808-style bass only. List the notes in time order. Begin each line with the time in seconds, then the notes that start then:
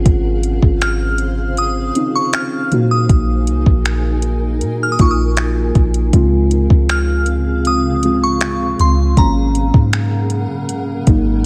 0.06 G#1
0.63 G#1
2.72 A#2
3.09 A#1
3.48 C2
3.66 A#1
4.61 A#2
4.99 A#1
5.75 A#1
6.13 C#2
6.70 C#2
8.79 C#2
9.17 G#1
9.74 G#2
11.07 G#1